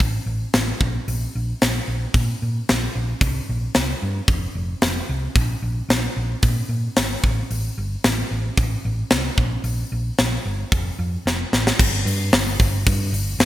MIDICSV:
0, 0, Header, 1, 3, 480
1, 0, Start_track
1, 0, Tempo, 536193
1, 961, Time_signature, 4, 2, 24, 8
1, 12042, End_track
2, 0, Start_track
2, 0, Title_t, "Fingered electric bass"
2, 0, Program_c, 0, 33
2, 1, Note_on_c, 0, 33, 87
2, 156, Note_off_c, 0, 33, 0
2, 234, Note_on_c, 0, 33, 81
2, 391, Note_off_c, 0, 33, 0
2, 482, Note_on_c, 0, 33, 77
2, 636, Note_off_c, 0, 33, 0
2, 721, Note_on_c, 0, 34, 81
2, 876, Note_off_c, 0, 34, 0
2, 965, Note_on_c, 0, 34, 85
2, 1118, Note_off_c, 0, 34, 0
2, 1211, Note_on_c, 0, 34, 76
2, 1363, Note_off_c, 0, 34, 0
2, 1448, Note_on_c, 0, 34, 77
2, 1600, Note_off_c, 0, 34, 0
2, 1680, Note_on_c, 0, 34, 76
2, 1835, Note_off_c, 0, 34, 0
2, 1922, Note_on_c, 0, 46, 82
2, 2076, Note_off_c, 0, 46, 0
2, 2168, Note_on_c, 0, 46, 82
2, 2320, Note_off_c, 0, 46, 0
2, 2416, Note_on_c, 0, 34, 76
2, 2565, Note_off_c, 0, 34, 0
2, 2645, Note_on_c, 0, 34, 74
2, 2798, Note_off_c, 0, 34, 0
2, 2874, Note_on_c, 0, 36, 82
2, 3031, Note_off_c, 0, 36, 0
2, 3126, Note_on_c, 0, 34, 81
2, 3279, Note_off_c, 0, 34, 0
2, 3361, Note_on_c, 0, 36, 80
2, 3515, Note_off_c, 0, 36, 0
2, 3602, Note_on_c, 0, 43, 78
2, 3756, Note_off_c, 0, 43, 0
2, 3832, Note_on_c, 0, 29, 86
2, 3990, Note_off_c, 0, 29, 0
2, 4075, Note_on_c, 0, 29, 85
2, 4231, Note_off_c, 0, 29, 0
2, 4318, Note_on_c, 0, 29, 74
2, 4474, Note_off_c, 0, 29, 0
2, 4559, Note_on_c, 0, 36, 79
2, 4714, Note_off_c, 0, 36, 0
2, 4797, Note_on_c, 0, 34, 85
2, 4953, Note_off_c, 0, 34, 0
2, 5035, Note_on_c, 0, 34, 77
2, 5191, Note_off_c, 0, 34, 0
2, 5269, Note_on_c, 0, 34, 80
2, 5428, Note_off_c, 0, 34, 0
2, 5519, Note_on_c, 0, 34, 84
2, 5674, Note_off_c, 0, 34, 0
2, 5757, Note_on_c, 0, 46, 87
2, 5913, Note_off_c, 0, 46, 0
2, 5986, Note_on_c, 0, 46, 83
2, 6146, Note_off_c, 0, 46, 0
2, 6240, Note_on_c, 0, 32, 78
2, 6395, Note_off_c, 0, 32, 0
2, 6484, Note_on_c, 0, 33, 78
2, 6638, Note_off_c, 0, 33, 0
2, 6718, Note_on_c, 0, 33, 86
2, 6874, Note_off_c, 0, 33, 0
2, 6961, Note_on_c, 0, 31, 85
2, 7116, Note_off_c, 0, 31, 0
2, 7200, Note_on_c, 0, 33, 78
2, 7356, Note_off_c, 0, 33, 0
2, 7440, Note_on_c, 0, 33, 77
2, 7596, Note_off_c, 0, 33, 0
2, 7676, Note_on_c, 0, 33, 89
2, 7833, Note_off_c, 0, 33, 0
2, 7921, Note_on_c, 0, 33, 83
2, 8076, Note_off_c, 0, 33, 0
2, 8156, Note_on_c, 0, 36, 78
2, 8314, Note_off_c, 0, 36, 0
2, 8397, Note_on_c, 0, 34, 78
2, 8554, Note_off_c, 0, 34, 0
2, 8627, Note_on_c, 0, 34, 88
2, 8788, Note_off_c, 0, 34, 0
2, 8879, Note_on_c, 0, 34, 78
2, 9036, Note_off_c, 0, 34, 0
2, 9121, Note_on_c, 0, 34, 78
2, 9277, Note_off_c, 0, 34, 0
2, 9358, Note_on_c, 0, 31, 81
2, 9515, Note_off_c, 0, 31, 0
2, 9599, Note_on_c, 0, 29, 81
2, 9756, Note_off_c, 0, 29, 0
2, 9835, Note_on_c, 0, 41, 77
2, 9993, Note_off_c, 0, 41, 0
2, 10075, Note_on_c, 0, 29, 76
2, 10233, Note_off_c, 0, 29, 0
2, 10320, Note_on_c, 0, 33, 75
2, 10476, Note_off_c, 0, 33, 0
2, 10558, Note_on_c, 0, 31, 99
2, 10772, Note_off_c, 0, 31, 0
2, 10791, Note_on_c, 0, 43, 83
2, 11009, Note_off_c, 0, 43, 0
2, 11032, Note_on_c, 0, 31, 90
2, 11249, Note_off_c, 0, 31, 0
2, 11277, Note_on_c, 0, 31, 86
2, 11492, Note_off_c, 0, 31, 0
2, 11520, Note_on_c, 0, 43, 92
2, 11733, Note_off_c, 0, 43, 0
2, 11749, Note_on_c, 0, 31, 89
2, 11966, Note_off_c, 0, 31, 0
2, 11982, Note_on_c, 0, 31, 89
2, 12042, Note_off_c, 0, 31, 0
2, 12042, End_track
3, 0, Start_track
3, 0, Title_t, "Drums"
3, 2, Note_on_c, 9, 36, 101
3, 4, Note_on_c, 9, 46, 49
3, 91, Note_off_c, 9, 36, 0
3, 93, Note_off_c, 9, 46, 0
3, 479, Note_on_c, 9, 46, 50
3, 482, Note_on_c, 9, 38, 104
3, 569, Note_off_c, 9, 46, 0
3, 572, Note_off_c, 9, 38, 0
3, 722, Note_on_c, 9, 36, 85
3, 811, Note_off_c, 9, 36, 0
3, 967, Note_on_c, 9, 46, 52
3, 1057, Note_off_c, 9, 46, 0
3, 1447, Note_on_c, 9, 46, 50
3, 1450, Note_on_c, 9, 38, 89
3, 1536, Note_off_c, 9, 46, 0
3, 1539, Note_off_c, 9, 38, 0
3, 1918, Note_on_c, 9, 36, 97
3, 1925, Note_on_c, 9, 46, 54
3, 2008, Note_off_c, 9, 36, 0
3, 2014, Note_off_c, 9, 46, 0
3, 2407, Note_on_c, 9, 46, 51
3, 2410, Note_on_c, 9, 38, 98
3, 2497, Note_off_c, 9, 46, 0
3, 2500, Note_off_c, 9, 38, 0
3, 2875, Note_on_c, 9, 36, 101
3, 2876, Note_on_c, 9, 46, 49
3, 2964, Note_off_c, 9, 36, 0
3, 2966, Note_off_c, 9, 46, 0
3, 3352, Note_on_c, 9, 46, 44
3, 3355, Note_on_c, 9, 38, 91
3, 3442, Note_off_c, 9, 46, 0
3, 3445, Note_off_c, 9, 38, 0
3, 3830, Note_on_c, 9, 46, 48
3, 3832, Note_on_c, 9, 36, 104
3, 3919, Note_off_c, 9, 46, 0
3, 3921, Note_off_c, 9, 36, 0
3, 4313, Note_on_c, 9, 46, 49
3, 4316, Note_on_c, 9, 38, 99
3, 4403, Note_off_c, 9, 46, 0
3, 4405, Note_off_c, 9, 38, 0
3, 4794, Note_on_c, 9, 36, 102
3, 4799, Note_on_c, 9, 46, 48
3, 4884, Note_off_c, 9, 36, 0
3, 4888, Note_off_c, 9, 46, 0
3, 5282, Note_on_c, 9, 46, 49
3, 5284, Note_on_c, 9, 38, 95
3, 5371, Note_off_c, 9, 46, 0
3, 5374, Note_off_c, 9, 38, 0
3, 5752, Note_on_c, 9, 46, 53
3, 5755, Note_on_c, 9, 36, 103
3, 5841, Note_off_c, 9, 46, 0
3, 5844, Note_off_c, 9, 36, 0
3, 6234, Note_on_c, 9, 46, 59
3, 6237, Note_on_c, 9, 38, 101
3, 6324, Note_off_c, 9, 46, 0
3, 6326, Note_off_c, 9, 38, 0
3, 6478, Note_on_c, 9, 36, 83
3, 6567, Note_off_c, 9, 36, 0
3, 6720, Note_on_c, 9, 46, 54
3, 6810, Note_off_c, 9, 46, 0
3, 7198, Note_on_c, 9, 46, 47
3, 7201, Note_on_c, 9, 38, 95
3, 7288, Note_off_c, 9, 46, 0
3, 7290, Note_off_c, 9, 38, 0
3, 7676, Note_on_c, 9, 36, 104
3, 7676, Note_on_c, 9, 46, 47
3, 7766, Note_off_c, 9, 36, 0
3, 7766, Note_off_c, 9, 46, 0
3, 8150, Note_on_c, 9, 46, 47
3, 8153, Note_on_c, 9, 38, 107
3, 8240, Note_off_c, 9, 46, 0
3, 8243, Note_off_c, 9, 38, 0
3, 8394, Note_on_c, 9, 36, 87
3, 8484, Note_off_c, 9, 36, 0
3, 8630, Note_on_c, 9, 46, 52
3, 8719, Note_off_c, 9, 46, 0
3, 9116, Note_on_c, 9, 46, 44
3, 9118, Note_on_c, 9, 38, 94
3, 9205, Note_off_c, 9, 46, 0
3, 9208, Note_off_c, 9, 38, 0
3, 9597, Note_on_c, 9, 36, 108
3, 9598, Note_on_c, 9, 46, 53
3, 9686, Note_off_c, 9, 36, 0
3, 9687, Note_off_c, 9, 46, 0
3, 10090, Note_on_c, 9, 38, 60
3, 10179, Note_off_c, 9, 38, 0
3, 10323, Note_on_c, 9, 38, 66
3, 10412, Note_off_c, 9, 38, 0
3, 10447, Note_on_c, 9, 38, 76
3, 10537, Note_off_c, 9, 38, 0
3, 10558, Note_on_c, 9, 36, 109
3, 10563, Note_on_c, 9, 49, 116
3, 10648, Note_off_c, 9, 36, 0
3, 10653, Note_off_c, 9, 49, 0
3, 10806, Note_on_c, 9, 46, 58
3, 10896, Note_off_c, 9, 46, 0
3, 11035, Note_on_c, 9, 46, 81
3, 11038, Note_on_c, 9, 38, 100
3, 11125, Note_off_c, 9, 46, 0
3, 11127, Note_off_c, 9, 38, 0
3, 11275, Note_on_c, 9, 46, 58
3, 11277, Note_on_c, 9, 36, 86
3, 11365, Note_off_c, 9, 46, 0
3, 11367, Note_off_c, 9, 36, 0
3, 11517, Note_on_c, 9, 46, 81
3, 11518, Note_on_c, 9, 36, 112
3, 11607, Note_off_c, 9, 46, 0
3, 11608, Note_off_c, 9, 36, 0
3, 11762, Note_on_c, 9, 46, 64
3, 11852, Note_off_c, 9, 46, 0
3, 11995, Note_on_c, 9, 46, 85
3, 11998, Note_on_c, 9, 38, 114
3, 12042, Note_off_c, 9, 38, 0
3, 12042, Note_off_c, 9, 46, 0
3, 12042, End_track
0, 0, End_of_file